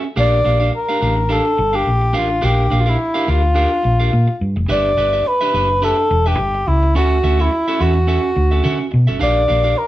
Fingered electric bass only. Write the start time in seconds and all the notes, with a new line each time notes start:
0.17 A#1
0.46 A#1
1.02 A1
1.59 G1
1.87 A#1
2.15 A1
2.43 A#1
2.72 A#1
3.28 D2
3.85 A#1
4.13 A#2
4.41 G2
4.57 F1
4.69 G1
4.97 G1
5.54 F#1
6.11 E1
6.39 G1
6.67 C#2
6.96 D2
7.24 D2
7.80 E2
8.37 D2
8.65 D3
8.94 B2
9.09 G1
9.21 A#1
9.50 A#1